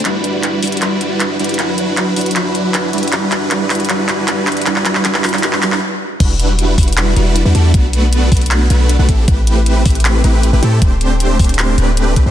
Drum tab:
CC |--------------------------------|--------------------------------|--------------------------------|--------------------------------|
HH |x---x---x---oxxxx---x---x---xxxx|x---x---x---oxxxx---x---x---xxxx|x---x---x---oxxxx---x---x---xxxx|x---x---x---oxxxx---x-----------|
CP |x-------x-------x-------x-------|x-------x-------x-------x-------|x---x---x---x---x---x---x---x---|x-x-x-x-x-x-x-x-x-x-x-x---------|
BD |--------------------------------|--------------------------------|--------------------------------|--------------------------------|

CC |x-------------------------------|--------------------------------|--------------------------------|--------------------------------|
HH |x---x---x---oxxxx---x---x---x---|x---x---x---oxxxx---x---x---x---|x---x---x---oxxxx---x---x---x---|x---x---x---oxxxx---x---x---x---|
CP |----------------x---------------|----------------x---------------|----------------x---------------|----------------x---------------|
BD |o-----------o-------------------|o-----------o---------------o---|o-----------o-------------------|o-----------o---------------o---|